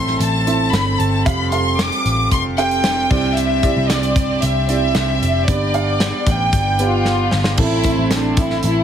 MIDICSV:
0, 0, Header, 1, 7, 480
1, 0, Start_track
1, 0, Key_signature, 0, "major"
1, 0, Tempo, 527704
1, 1144, Time_signature, 4, 2, 24, 8
1, 8037, End_track
2, 0, Start_track
2, 0, Title_t, "Violin section"
2, 0, Program_c, 0, 48
2, 0, Note_on_c, 0, 84, 89
2, 179, Note_off_c, 0, 84, 0
2, 180, Note_on_c, 0, 81, 96
2, 629, Note_off_c, 0, 81, 0
2, 654, Note_on_c, 0, 83, 98
2, 897, Note_on_c, 0, 81, 87
2, 899, Note_off_c, 0, 83, 0
2, 1141, Note_off_c, 0, 81, 0
2, 1147, Note_on_c, 0, 83, 91
2, 1369, Note_off_c, 0, 83, 0
2, 1377, Note_on_c, 0, 84, 97
2, 1604, Note_off_c, 0, 84, 0
2, 1620, Note_on_c, 0, 86, 102
2, 2103, Note_off_c, 0, 86, 0
2, 2103, Note_on_c, 0, 84, 104
2, 2211, Note_off_c, 0, 84, 0
2, 2337, Note_on_c, 0, 79, 102
2, 3025, Note_off_c, 0, 79, 0
2, 3051, Note_on_c, 0, 76, 98
2, 3537, Note_on_c, 0, 74, 93
2, 3538, Note_off_c, 0, 76, 0
2, 4016, Note_on_c, 0, 76, 96
2, 4021, Note_off_c, 0, 74, 0
2, 4254, Note_off_c, 0, 76, 0
2, 4265, Note_on_c, 0, 76, 101
2, 4949, Note_off_c, 0, 76, 0
2, 4991, Note_on_c, 0, 74, 91
2, 5707, Note_off_c, 0, 74, 0
2, 5715, Note_on_c, 0, 79, 88
2, 6208, Note_on_c, 0, 65, 88
2, 6429, Note_off_c, 0, 79, 0
2, 6879, Note_off_c, 0, 65, 0
2, 6915, Note_on_c, 0, 64, 98
2, 7355, Note_off_c, 0, 64, 0
2, 7407, Note_on_c, 0, 62, 85
2, 7634, Note_off_c, 0, 62, 0
2, 7637, Note_on_c, 0, 64, 90
2, 7864, Note_off_c, 0, 64, 0
2, 7875, Note_on_c, 0, 64, 90
2, 8037, Note_off_c, 0, 64, 0
2, 8037, End_track
3, 0, Start_track
3, 0, Title_t, "Upright piano"
3, 0, Program_c, 1, 0
3, 0, Control_c, 1, 64, 127
3, 0, Note_on_c, 1, 45, 60
3, 0, Note_on_c, 1, 60, 70
3, 0, Note_on_c, 1, 64, 63
3, 0, Note_on_c, 1, 69, 67
3, 0, Note_on_c, 1, 76, 85
3, 264, Note_off_c, 1, 60, 0
3, 264, Note_off_c, 1, 64, 0
3, 264, Note_off_c, 1, 69, 0
3, 264, Note_off_c, 1, 76, 0
3, 424, Note_on_c, 1, 60, 68
3, 424, Note_on_c, 1, 64, 57
3, 427, Note_on_c, 1, 69, 61
3, 428, Note_on_c, 1, 76, 76
3, 1027, Note_off_c, 1, 60, 0
3, 1027, Note_off_c, 1, 64, 0
3, 1029, Note_off_c, 1, 69, 0
3, 1029, Note_off_c, 1, 76, 0
3, 1138, Note_on_c, 1, 60, 68
3, 1142, Note_on_c, 1, 67, 61
3, 1142, Note_on_c, 1, 69, 57
3, 1144, Note_on_c, 1, 77, 78
3, 1157, Control_c, 1, 64, 0
3, 1160, Note_off_c, 1, 45, 0
3, 1309, Control_c, 1, 64, 127
3, 1342, Note_off_c, 1, 60, 0
3, 1344, Note_off_c, 1, 67, 0
3, 1344, Note_off_c, 1, 69, 0
3, 1346, Note_off_c, 1, 77, 0
3, 1382, Note_on_c, 1, 67, 65
3, 1383, Note_on_c, 1, 60, 74
3, 1385, Note_on_c, 1, 69, 60
3, 1385, Note_on_c, 1, 77, 72
3, 2188, Note_off_c, 1, 60, 0
3, 2188, Note_off_c, 1, 67, 0
3, 2189, Note_off_c, 1, 69, 0
3, 2190, Note_off_c, 1, 77, 0
3, 2344, Note_on_c, 1, 60, 75
3, 2346, Note_on_c, 1, 69, 65
3, 2348, Note_on_c, 1, 77, 81
3, 2349, Note_on_c, 1, 67, 67
3, 2808, Note_off_c, 1, 60, 0
3, 2811, Note_off_c, 1, 67, 0
3, 2821, Note_on_c, 1, 60, 76
3, 2821, Note_on_c, 1, 74, 83
3, 2822, Note_on_c, 1, 64, 64
3, 2824, Note_on_c, 1, 67, 75
3, 2825, Note_on_c, 1, 48, 59
3, 2826, Note_off_c, 1, 69, 0
3, 2826, Note_off_c, 1, 77, 0
3, 2837, Control_c, 1, 64, 0
3, 3002, Control_c, 1, 64, 127
3, 3225, Note_off_c, 1, 60, 0
3, 3225, Note_off_c, 1, 74, 0
3, 3226, Note_off_c, 1, 64, 0
3, 3227, Note_off_c, 1, 67, 0
3, 3305, Note_on_c, 1, 60, 67
3, 3305, Note_on_c, 1, 74, 84
3, 3306, Note_on_c, 1, 67, 73
3, 3308, Note_on_c, 1, 64, 66
3, 3509, Note_off_c, 1, 48, 0
3, 4109, Note_off_c, 1, 60, 0
3, 4109, Note_off_c, 1, 74, 0
3, 4110, Note_off_c, 1, 67, 0
3, 4111, Note_off_c, 1, 64, 0
3, 4263, Note_on_c, 1, 74, 80
3, 4264, Note_on_c, 1, 60, 67
3, 4266, Note_on_c, 1, 64, 61
3, 4269, Note_on_c, 1, 67, 67
3, 4867, Note_off_c, 1, 60, 0
3, 4867, Note_off_c, 1, 74, 0
3, 4869, Note_off_c, 1, 64, 0
3, 4870, Note_off_c, 1, 67, 0
3, 4980, Note_on_c, 1, 74, 79
3, 4983, Note_on_c, 1, 59, 72
3, 4983, Note_on_c, 1, 67, 65
3, 4984, Note_on_c, 1, 43, 64
3, 4984, Note_on_c, 1, 62, 65
3, 4998, Control_c, 1, 64, 0
3, 5157, Control_c, 1, 64, 127
3, 5184, Note_off_c, 1, 74, 0
3, 5185, Note_off_c, 1, 59, 0
3, 5185, Note_off_c, 1, 62, 0
3, 5185, Note_off_c, 1, 67, 0
3, 5221, Note_on_c, 1, 59, 68
3, 5222, Note_on_c, 1, 67, 65
3, 5224, Note_on_c, 1, 62, 61
3, 5224, Note_on_c, 1, 77, 83
3, 5668, Note_off_c, 1, 43, 0
3, 6026, Note_off_c, 1, 59, 0
3, 6027, Note_off_c, 1, 67, 0
3, 6028, Note_off_c, 1, 62, 0
3, 6028, Note_off_c, 1, 77, 0
3, 6179, Note_on_c, 1, 59, 75
3, 6179, Note_on_c, 1, 62, 59
3, 6182, Note_on_c, 1, 67, 65
3, 6184, Note_on_c, 1, 71, 75
3, 6784, Note_off_c, 1, 59, 0
3, 6784, Note_off_c, 1, 62, 0
3, 6785, Note_off_c, 1, 67, 0
3, 6786, Note_off_c, 1, 71, 0
3, 6898, Note_on_c, 1, 60, 67
3, 6898, Note_on_c, 1, 64, 68
3, 6898, Note_on_c, 1, 69, 79
3, 6900, Note_on_c, 1, 45, 61
3, 6915, Control_c, 1, 64, 0
3, 7076, Control_c, 1, 64, 127
3, 7101, Note_off_c, 1, 60, 0
3, 7101, Note_off_c, 1, 64, 0
3, 7101, Note_off_c, 1, 69, 0
3, 7138, Note_on_c, 1, 60, 76
3, 7141, Note_on_c, 1, 69, 83
3, 7144, Note_on_c, 1, 64, 69
3, 7584, Note_off_c, 1, 45, 0
3, 7943, Note_off_c, 1, 60, 0
3, 7945, Note_off_c, 1, 69, 0
3, 7946, Note_off_c, 1, 64, 0
3, 8037, End_track
4, 0, Start_track
4, 0, Title_t, "Tonewheel organ"
4, 0, Program_c, 2, 16
4, 0, Note_on_c, 2, 57, 71
4, 0, Note_on_c, 2, 60, 65
4, 0, Note_on_c, 2, 64, 74
4, 1126, Note_off_c, 2, 60, 0
4, 1126, Note_off_c, 2, 64, 0
4, 1140, Note_on_c, 2, 55, 70
4, 1144, Note_on_c, 2, 65, 78
4, 2791, Note_off_c, 2, 57, 0
4, 2806, Note_off_c, 2, 55, 0
4, 2808, Note_off_c, 2, 65, 0
4, 2817, Note_on_c, 2, 64, 54
4, 2818, Note_on_c, 2, 48, 57
4, 2819, Note_on_c, 2, 62, 56
4, 2819, Note_on_c, 2, 67, 63
4, 2821, Note_on_c, 2, 60, 53
4, 4959, Note_off_c, 2, 64, 0
4, 4960, Note_off_c, 2, 48, 0
4, 4960, Note_off_c, 2, 67, 0
4, 4961, Note_off_c, 2, 60, 0
4, 4986, Note_on_c, 2, 59, 69
4, 4996, Note_on_c, 2, 67, 84
4, 6864, Note_off_c, 2, 62, 0
4, 6885, Note_off_c, 2, 59, 0
4, 6890, Note_off_c, 2, 67, 0
4, 6899, Note_on_c, 2, 60, 64
4, 6900, Note_on_c, 2, 57, 73
4, 6905, Note_on_c, 2, 64, 73
4, 8037, Note_off_c, 2, 57, 0
4, 8037, Note_off_c, 2, 60, 0
4, 8037, Note_off_c, 2, 64, 0
4, 8037, End_track
5, 0, Start_track
5, 0, Title_t, "French horn section"
5, 0, Program_c, 3, 60
5, 6897, Note_on_c, 3, 48, 77
5, 6899, Note_on_c, 3, 60, 84
5, 7605, Note_off_c, 3, 48, 0
5, 7605, Note_off_c, 3, 60, 0
5, 7867, Note_on_c, 3, 64, 88
5, 7868, Note_on_c, 3, 52, 83
5, 8037, Note_off_c, 3, 52, 0
5, 8037, Note_off_c, 3, 64, 0
5, 8037, End_track
6, 0, Start_track
6, 0, Title_t, "Picked electric bass"
6, 0, Program_c, 4, 34
6, 0, Note_on_c, 4, 33, 86
6, 154, Note_off_c, 4, 33, 0
6, 181, Note_on_c, 4, 33, 96
6, 629, Note_off_c, 4, 33, 0
6, 659, Note_on_c, 4, 31, 86
6, 885, Note_off_c, 4, 31, 0
6, 903, Note_on_c, 4, 31, 89
6, 1127, Note_off_c, 4, 31, 0
6, 1150, Note_on_c, 4, 29, 105
6, 1717, Note_off_c, 4, 29, 0
6, 1866, Note_on_c, 4, 33, 83
6, 2108, Note_off_c, 4, 33, 0
6, 2108, Note_on_c, 4, 29, 101
6, 2791, Note_off_c, 4, 29, 0
6, 2827, Note_on_c, 4, 36, 84
6, 3390, Note_off_c, 4, 36, 0
6, 3424, Note_on_c, 4, 36, 87
6, 3995, Note_off_c, 4, 36, 0
6, 4027, Note_on_c, 4, 36, 104
6, 4472, Note_off_c, 4, 36, 0
6, 4506, Note_on_c, 4, 36, 84
6, 4729, Note_off_c, 4, 36, 0
6, 4749, Note_on_c, 4, 29, 93
6, 4970, Note_off_c, 4, 29, 0
6, 4984, Note_on_c, 4, 31, 98
6, 5554, Note_off_c, 4, 31, 0
6, 5698, Note_on_c, 4, 33, 86
6, 5924, Note_off_c, 4, 33, 0
6, 5937, Note_on_c, 4, 31, 101
6, 6624, Note_off_c, 4, 31, 0
6, 6660, Note_on_c, 4, 31, 69
6, 6885, Note_off_c, 4, 31, 0
6, 6895, Note_on_c, 4, 33, 106
6, 7233, Note_off_c, 4, 33, 0
6, 7255, Note_on_c, 4, 33, 83
6, 7828, Note_off_c, 4, 33, 0
6, 7857, Note_on_c, 4, 33, 104
6, 8037, Note_off_c, 4, 33, 0
6, 8037, End_track
7, 0, Start_track
7, 0, Title_t, "Drums"
7, 66, Note_on_c, 9, 38, 36
7, 157, Note_off_c, 9, 38, 0
7, 187, Note_on_c, 9, 42, 104
7, 278, Note_off_c, 9, 42, 0
7, 429, Note_on_c, 9, 42, 62
7, 520, Note_off_c, 9, 42, 0
7, 668, Note_on_c, 9, 38, 102
7, 668, Note_on_c, 9, 42, 79
7, 759, Note_off_c, 9, 38, 0
7, 759, Note_off_c, 9, 42, 0
7, 909, Note_on_c, 9, 42, 69
7, 1000, Note_off_c, 9, 42, 0
7, 1147, Note_on_c, 9, 36, 112
7, 1151, Note_on_c, 9, 42, 102
7, 1238, Note_off_c, 9, 36, 0
7, 1242, Note_off_c, 9, 42, 0
7, 1383, Note_on_c, 9, 42, 74
7, 1473, Note_off_c, 9, 42, 0
7, 1628, Note_on_c, 9, 38, 114
7, 1632, Note_on_c, 9, 42, 90
7, 1719, Note_off_c, 9, 38, 0
7, 1723, Note_off_c, 9, 42, 0
7, 1747, Note_on_c, 9, 42, 54
7, 1837, Note_off_c, 9, 42, 0
7, 1871, Note_on_c, 9, 42, 95
7, 1962, Note_off_c, 9, 42, 0
7, 2105, Note_on_c, 9, 36, 82
7, 2105, Note_on_c, 9, 42, 101
7, 2196, Note_off_c, 9, 36, 0
7, 2196, Note_off_c, 9, 42, 0
7, 2350, Note_on_c, 9, 42, 72
7, 2441, Note_off_c, 9, 42, 0
7, 2468, Note_on_c, 9, 42, 50
7, 2559, Note_off_c, 9, 42, 0
7, 2581, Note_on_c, 9, 38, 112
7, 2581, Note_on_c, 9, 42, 73
7, 2672, Note_off_c, 9, 38, 0
7, 2672, Note_off_c, 9, 42, 0
7, 2825, Note_on_c, 9, 49, 62
7, 2826, Note_on_c, 9, 36, 97
7, 2916, Note_off_c, 9, 49, 0
7, 2917, Note_off_c, 9, 36, 0
7, 3066, Note_on_c, 9, 42, 98
7, 3157, Note_off_c, 9, 42, 0
7, 3302, Note_on_c, 9, 42, 74
7, 3303, Note_on_c, 9, 36, 86
7, 3393, Note_off_c, 9, 42, 0
7, 3394, Note_off_c, 9, 36, 0
7, 3544, Note_on_c, 9, 38, 110
7, 3548, Note_on_c, 9, 42, 99
7, 3635, Note_off_c, 9, 38, 0
7, 3639, Note_off_c, 9, 42, 0
7, 3666, Note_on_c, 9, 42, 53
7, 3757, Note_off_c, 9, 42, 0
7, 3782, Note_on_c, 9, 36, 107
7, 3787, Note_on_c, 9, 42, 86
7, 3873, Note_off_c, 9, 36, 0
7, 3878, Note_off_c, 9, 42, 0
7, 4021, Note_on_c, 9, 42, 107
7, 4112, Note_off_c, 9, 42, 0
7, 4264, Note_on_c, 9, 42, 76
7, 4355, Note_off_c, 9, 42, 0
7, 4500, Note_on_c, 9, 38, 103
7, 4500, Note_on_c, 9, 42, 76
7, 4591, Note_off_c, 9, 38, 0
7, 4591, Note_off_c, 9, 42, 0
7, 4755, Note_on_c, 9, 42, 64
7, 4846, Note_off_c, 9, 42, 0
7, 4984, Note_on_c, 9, 36, 106
7, 4987, Note_on_c, 9, 42, 105
7, 5075, Note_off_c, 9, 36, 0
7, 5077, Note_off_c, 9, 42, 0
7, 5222, Note_on_c, 9, 42, 72
7, 5313, Note_off_c, 9, 42, 0
7, 5459, Note_on_c, 9, 38, 106
7, 5463, Note_on_c, 9, 42, 91
7, 5550, Note_off_c, 9, 38, 0
7, 5554, Note_off_c, 9, 42, 0
7, 5699, Note_on_c, 9, 36, 104
7, 5704, Note_on_c, 9, 42, 85
7, 5790, Note_off_c, 9, 36, 0
7, 5795, Note_off_c, 9, 42, 0
7, 5938, Note_on_c, 9, 36, 89
7, 5938, Note_on_c, 9, 42, 97
7, 6029, Note_off_c, 9, 36, 0
7, 6029, Note_off_c, 9, 42, 0
7, 6176, Note_on_c, 9, 42, 69
7, 6267, Note_off_c, 9, 42, 0
7, 6413, Note_on_c, 9, 38, 53
7, 6503, Note_off_c, 9, 38, 0
7, 6652, Note_on_c, 9, 38, 76
7, 6743, Note_off_c, 9, 38, 0
7, 6770, Note_on_c, 9, 38, 93
7, 6861, Note_off_c, 9, 38, 0
7, 6890, Note_on_c, 9, 57, 109
7, 6895, Note_on_c, 9, 36, 114
7, 6981, Note_off_c, 9, 57, 0
7, 6986, Note_off_c, 9, 36, 0
7, 7126, Note_on_c, 9, 42, 87
7, 7135, Note_on_c, 9, 36, 94
7, 7217, Note_off_c, 9, 42, 0
7, 7226, Note_off_c, 9, 36, 0
7, 7374, Note_on_c, 9, 38, 111
7, 7377, Note_on_c, 9, 42, 102
7, 7465, Note_off_c, 9, 38, 0
7, 7468, Note_off_c, 9, 42, 0
7, 7612, Note_on_c, 9, 42, 92
7, 7615, Note_on_c, 9, 36, 112
7, 7703, Note_off_c, 9, 42, 0
7, 7706, Note_off_c, 9, 36, 0
7, 7732, Note_on_c, 9, 38, 39
7, 7823, Note_off_c, 9, 38, 0
7, 7847, Note_on_c, 9, 42, 95
7, 7938, Note_off_c, 9, 42, 0
7, 8037, End_track
0, 0, End_of_file